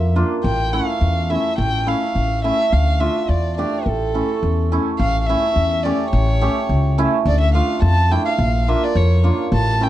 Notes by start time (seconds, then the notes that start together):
Already playing: F2 E5
0.16 A#3 D4 F4
0.44 A1 G5
0.73 A3 C#4 E4 F5
1.01 E2
1.30 A3 C#4 E4 E5
1.58 A1 G5
1.86 A3 C#4 E4 F5
2.15 A1
2.44 A3 C#4 E4 E5
2.73 D2 F5
3.00 A3 D4 F4 E5
3.29 E2 D5
3.58 A3 D4 G4 D5
3.86 A1 A4
4.14 A3 C#4 E4
4.43 E2
4.72 A3 C#4 E4
4.99 A1 F5
5.21 F5
5.26 A3 C#4 E4 E5
5.56 E2
5.83 A3 C#4 G4 D5
6.11 A1 C#5
6.41 A3 C#4 G4
6.69 C#2
6.98 A3 C#4 E4
7.25 D2 D5
7.40 E5
7.54 A3 D4 F4 F5
7.82 F2 A5
8.11 A3 D4 E4 G5
8.26 F5
8.38 A#1
8.68 A#3 D4 F4 E5
8.84 D5
8.95 F2 C#5
9.24 A#3 D4 F4
9.52 A1 A5
9.80 A3 C#4 E4 G5